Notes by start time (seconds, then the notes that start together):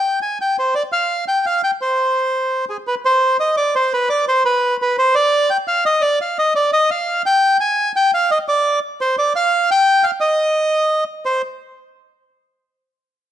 Already playing: G5
0.22 G#5
0.41 G5
0.59 C5
0.75 D5
0.92 F5
1.28 G5
1.46 F5
1.64 G5
1.81 C5
2.69 G#4
2.87 B4
3.05 C5
3.40 D#5
3.57 D5
3.75 C5
3.93 B4
4.09 D5
4.28 C5
4.45 B4
4.82 B4
4.99 C5
5.15 D5
5.50 G5
5.68 F5
5.86 D#5
6.01 D5
6.21 F5
6.39 D#5
6.55 D5
6.73 D#5
6.91 F5
7.26 G5
7.60 G#5
7.96 G5
8.14 F5
8.31 D#5
8.48 D5
9.01 C5
9.18 D5
9.36 F5
9.71 G5
10.04 F5
10.20 D#5
11.25 C5